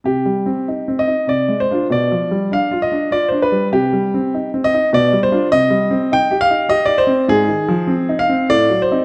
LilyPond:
\new Staff \with { instrumentName = "Grand piano" } { \time 3/4 \key c \minor \tempo 4 = 100 << { g'4. ees''8 d''8 c''8 | d''4 f''8 ees''8 d''16 c''16 b'8 | g'4. ees''8 d''8 c''8 | ees''4 g''8 f''8 ees''16 d''16 c''8 |
\key f \dorian aes'4. f''8 d''8 c''8 | } \\ { \tuplet 3/2 { c8 g8 c'8 ees'8 c'8 ees'8 c8 aes8 <d' f'>8 } | \tuplet 3/2 { b,8 f8 g8 d'8 f'8 d'8 f'8 d'8 g8 } | \tuplet 3/2 { c8 g8 c'8 ees'8 c'8 ees'8 b,8 g8 <d' f'>8 } | \tuplet 3/2 { c8 g8 c'8 ees'8 g'8 ees'8 g'8 ees'8 c'8 } |
\tuplet 3/2 { aes,8 ees8 f8 c'8 ees'8 c'8 a,8 fis8 <c' ees'>8 } | } >> }